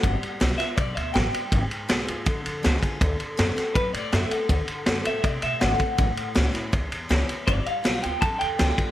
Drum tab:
RD |xxxxxxxx|xxxxxxxx|xxxxxxxx|xxxxxxxx|
SD |--oo--o-|--o---o-|--oo--o-|--o---o-|
BD |o---o---|o---o--o|o---o---|o---o--o|

RD |xxxxxxxx|xxxxxxxx|
SD |--oo--o-|--o---o-|
BD |o---o---|o---o--o|